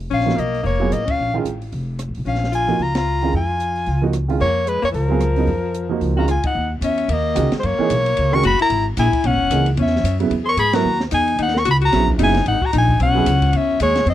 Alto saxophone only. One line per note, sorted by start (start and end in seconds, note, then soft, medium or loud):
0.11 0.38 C#4 medium
0.37 0.62 A#3 medium
0.63 0.91 A#3 medium
0.91 1.07 A#3 medium
1.05 1.33 C#4 medium
2.26 2.51 C#4 medium
2.52 2.79 F4 medium
2.79 2.95 F4 medium
2.96 3.31 F4 medium
3.35 4.11 F4 medium
4.40 4.68 A#3 medium
4.67 4.81 G#3 medium
4.82 4.87 A#3 medium
4.92 6.13 F3 medium
6.17 6.28 F#4 medium
6.29 6.43 F4 medium
6.45 6.70 D#4 soft
6.83 7.12 C#4 medium
7.10 7.52 A#3 medium
7.58 7.65 G#3 soft
7.63 8.35 A#3 medium
8.33 8.44 A#4 medium
8.45 8.59 F#4 medium
8.61 8.85 E4 medium
8.99 9.27 E4 medium
9.26 9.68 C#4 medium
9.79 10.18 C#4 medium
10.44 10.50 G#4 medium
10.48 10.58 A#4 medium
10.59 10.76 G#4 medium
10.74 11.01 F#4 medium
11.12 11.37 D#4 medium
11.39 11.56 D#4 medium
11.55 11.65 A#4 medium
11.65 11.72 F#4 medium
11.82 12.06 F#4 medium
12.19 12.44 D#4 medium
12.47 12.64 D#4 medium
12.62 12.72 F#4 medium
12.73 12.98 D#4 medium
13.00 13.54 C#4 medium
13.54 13.80 C#4 medium
13.81 14.05 G#3 medium
14.08 14.14 C4 medium